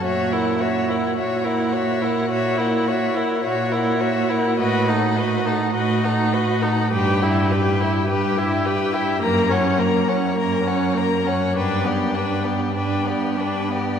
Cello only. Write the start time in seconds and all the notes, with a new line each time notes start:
0.04 A#2
1.18 A#2
2.32 A#2
3.46 A#2
4.60 A2
5.75 A2
6.93 G2
8.10 G2
9.22 F#2
10.38 F#2
11.56 G2
12.76 G2